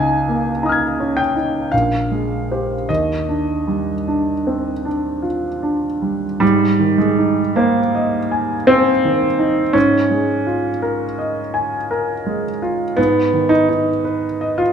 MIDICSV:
0, 0, Header, 1, 2, 480
1, 0, Start_track
1, 0, Tempo, 1075269
1, 768, Tempo, 1174168
1, 1246, Time_signature, 3, 2, 24, 8
1, 2688, Tempo, 1134216
1, 3648, Tempo, 1073345
1, 6349, End_track
2, 0, Start_track
2, 0, Title_t, "Grand piano"
2, 0, Program_c, 0, 0
2, 0, Control_c, 0, 64, 127
2, 0, Note_on_c, 0, 37, 48
2, 0, Note_on_c, 0, 63, 31
2, 0, Note_on_c, 0, 80, 74
2, 126, Note_on_c, 0, 58, 31
2, 218, Note_off_c, 0, 63, 0
2, 281, Note_on_c, 0, 63, 32
2, 282, Note_on_c, 0, 82, 24
2, 294, Note_on_c, 0, 87, 28
2, 308, Note_on_c, 0, 89, 25
2, 321, Note_on_c, 0, 92, 28
2, 374, Note_off_c, 0, 58, 0
2, 447, Note_on_c, 0, 61, 26
2, 513, Note_off_c, 0, 80, 0
2, 521, Note_on_c, 0, 79, 54
2, 535, Note_off_c, 0, 63, 0
2, 605, Note_off_c, 0, 61, 0
2, 605, Note_on_c, 0, 63, 27
2, 749, Note_off_c, 0, 37, 0
2, 753, Note_off_c, 0, 82, 0
2, 759, Note_off_c, 0, 87, 0
2, 766, Note_off_c, 0, 89, 0
2, 766, Note_on_c, 0, 77, 50
2, 770, Note_off_c, 0, 79, 0
2, 771, Note_off_c, 0, 63, 0
2, 772, Note_off_c, 0, 92, 0
2, 773, Note_on_c, 0, 34, 37
2, 776, Control_c, 0, 64, 0
2, 839, Control_c, 0, 64, 127
2, 930, Note_on_c, 0, 56, 27
2, 1093, Note_on_c, 0, 72, 26
2, 1094, Note_on_c, 0, 67, 26
2, 1183, Note_off_c, 0, 56, 0
2, 1234, Note_off_c, 0, 34, 0
2, 1234, Note_off_c, 0, 67, 0
2, 1234, Note_off_c, 0, 72, 0
2, 1245, Note_off_c, 0, 77, 0
2, 1245, Note_on_c, 0, 75, 49
2, 1250, Note_on_c, 0, 39, 36
2, 1253, Control_c, 0, 64, 0
2, 1333, Control_c, 0, 64, 127
2, 1408, Note_on_c, 0, 62, 22
2, 1567, Note_on_c, 0, 55, 25
2, 1668, Note_off_c, 0, 62, 0
2, 1732, Note_on_c, 0, 62, 29
2, 1828, Note_off_c, 0, 55, 0
2, 1892, Note_on_c, 0, 60, 20
2, 1988, Note_off_c, 0, 62, 0
2, 2048, Note_on_c, 0, 62, 23
2, 2050, Note_off_c, 0, 60, 0
2, 2200, Note_on_c, 0, 65, 30
2, 2207, Note_off_c, 0, 75, 0
2, 2300, Note_off_c, 0, 62, 0
2, 2365, Note_on_c, 0, 62, 26
2, 2459, Note_off_c, 0, 65, 0
2, 2526, Note_on_c, 0, 55, 25
2, 2624, Note_off_c, 0, 62, 0
2, 2673, Note_off_c, 0, 39, 0
2, 2675, Note_off_c, 0, 55, 0
2, 2681, Note_on_c, 0, 55, 71
2, 2684, Note_on_c, 0, 44, 45
2, 2695, Control_c, 0, 64, 0
2, 2778, Control_c, 0, 64, 127
2, 2848, Note_on_c, 0, 51, 33
2, 2927, Note_off_c, 0, 55, 0
2, 2927, Note_on_c, 0, 56, 47
2, 3013, Note_on_c, 0, 63, 28
2, 3106, Note_off_c, 0, 51, 0
2, 3170, Note_off_c, 0, 56, 0
2, 3171, Note_on_c, 0, 58, 59
2, 3175, Note_on_c, 0, 72, 32
2, 3269, Note_off_c, 0, 63, 0
2, 3336, Note_on_c, 0, 75, 33
2, 3430, Note_off_c, 0, 72, 0
2, 3491, Note_on_c, 0, 80, 31
2, 3588, Note_off_c, 0, 75, 0
2, 3642, Note_on_c, 0, 60, 72
2, 3645, Note_on_c, 0, 72, 35
2, 3648, Note_off_c, 0, 58, 0
2, 3745, Note_off_c, 0, 80, 0
2, 3810, Note_on_c, 0, 51, 31
2, 3902, Note_off_c, 0, 72, 0
2, 3963, Note_on_c, 0, 63, 38
2, 4062, Note_off_c, 0, 51, 0
2, 4104, Note_off_c, 0, 44, 0
2, 4116, Note_on_c, 0, 61, 71
2, 4121, Note_off_c, 0, 60, 0
2, 4122, Note_off_c, 0, 63, 0
2, 4122, Note_on_c, 0, 44, 42
2, 4132, Control_c, 0, 64, 0
2, 4216, Control_c, 0, 64, 127
2, 4283, Note_on_c, 0, 56, 32
2, 4444, Note_on_c, 0, 65, 36
2, 4542, Note_off_c, 0, 56, 0
2, 4604, Note_on_c, 0, 70, 37
2, 4705, Note_off_c, 0, 65, 0
2, 4766, Note_on_c, 0, 75, 34
2, 4865, Note_off_c, 0, 70, 0
2, 4924, Note_on_c, 0, 80, 36
2, 5025, Note_off_c, 0, 75, 0
2, 5089, Note_on_c, 0, 70, 38
2, 5183, Note_off_c, 0, 80, 0
2, 5249, Note_on_c, 0, 56, 30
2, 5325, Note_off_c, 0, 61, 0
2, 5343, Note_off_c, 0, 70, 0
2, 5409, Note_on_c, 0, 65, 37
2, 5502, Note_off_c, 0, 56, 0
2, 5547, Note_off_c, 0, 44, 0
2, 5562, Note_on_c, 0, 59, 75
2, 5567, Note_off_c, 0, 65, 0
2, 5568, Note_on_c, 0, 44, 44
2, 5574, Control_c, 0, 64, 0
2, 5657, Control_c, 0, 64, 127
2, 5726, Note_on_c, 0, 51, 30
2, 5797, Note_on_c, 0, 63, 67
2, 5802, Note_off_c, 0, 59, 0
2, 5880, Note_off_c, 0, 63, 0
2, 5980, Note_off_c, 0, 51, 0
2, 6046, Note_on_c, 0, 71, 40
2, 6208, Note_on_c, 0, 75, 41
2, 6283, Note_on_c, 0, 65, 65
2, 6303, Note_off_c, 0, 71, 0
2, 6349, Note_off_c, 0, 44, 0
2, 6349, Note_off_c, 0, 65, 0
2, 6349, Note_off_c, 0, 75, 0
2, 6349, End_track
0, 0, End_of_file